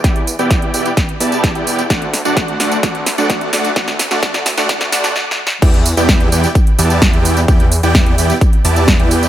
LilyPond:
<<
  \new Staff \with { instrumentName = "Supersaw synth" } { \time 4/4 \key e \minor \tempo 4 = 129 <b e' g' d'' g''>16 r8 <b e' g' d'' g''>8. <b e' g' d'' g''>16 r8. <b e' g' d'' a''>8. <b e' g' d'' g''>8 r16 | <a d' fis' d'' fis''>16 r8 <a d' fis' d'' fis''>8. <a d' fis' d'' fis''>16 r16 <a d' fis' d'' fis''>16 r8 <a d' fis' d'' fis''>8. <a d' fis' d'' fis''>16 r16 | <fis' d'' fis''>16 r8 <a d' fis' d'' fis''>16 <a d' fis' d'' fis''>16 r8 <a d' fis' d'' fis''>16 <a d' fis' d'' fis''>16 r16 <a d' fis' d'' fis''>16 r4 r16 | <b e' g' d'' g''>16 r8 <b e' g' d'' g''>8. <b e' g' d'' g''>16 r8. <b e' g' d'' a''>8. <b e' g' d'' g''>8 r16 |
<b e' g' d'' g''>16 r8 <b e' g' d'' g''>8. <b e' g' d'' g''>16 r8. <b e' g' d'' a''>8. <b e' g' d'' g''>8 r16 | }
  \new Staff \with { instrumentName = "Detuned saw bass" } { \clef bass \time 4/4 \key e \minor e,8. e,8. e,16 r8. e,8. e,8. | d,8. d,8. d,8 d,8. d,8. d,8 | d,8. d,16 d,8. d,16 d,8 d,8 r4 | e,8. e,8. e,16 r8. e,8. e,8. |
e,8. e,8. e,16 r8. e,8. e,8. | }
  \new DrumStaff \with { instrumentName = "Drums" } \drummode { \time 4/4 <hh bd sn tamb>16 hh16 <hho tamb>16 <hh tamb>16 <hh bd sn tamb>16 hh16 <hho tamb>16 <hh tamb>16 <hh bd sn tamb>16 hh16 <hho tamb>16 <hh tamb>16 <hh bd sn tamb>16 hh16 <hho tamb>16 <hh tamb>16 | <hh bd sn tamb>16 hh16 <hho sn tamb>16 <hh tamb>16 <hh bd sn tamb>16 hh16 <hho sn tamb>16 <hh tamb>16 <hh bd sn tamb>16 hh16 <hho sn tamb>16 <hh tamb>16 <hh bd sn tamb>16 hh16 <hho sn tamb>16 <hh tamb>16 | <hh bd sn tamb>16 <hh sn>16 <hho sn tamb>16 <hh sn tamb>16 <hh bd sn tamb>16 <hh sn>16 <hho sn tamb>16 <hh sn tamb>16 <hh bd sn tamb>16 <hh sn>16 <hho sn tamb>16 <hh sn tamb>16 \tuplet 3/2 { sn8 sn8 sn8 } | <cymc hh bd tamb>16 hh16 <hho tamb>16 <hh tamb>16 <hh bd sn tamb>16 hh16 <hho tamb>16 <hh tamb>16 <hh bd tamb>16 hh16 <hho tamb>16 <hh tamb>16 <hh bd sn tamb>16 hh16 <hho tamb>16 <hh tamb>16 |
<hh bd tamb>16 hh16 <hho tamb>16 <hh tamb>16 <hh bd sn tamb>16 hh16 <hho tamb>16 <hh tamb>16 <hh bd tamb>16 hh16 <hho tamb>16 <hh tamb>16 <hh bd sn tamb>16 hh16 <hho tamb>16 <hh tamb>16 | }
>>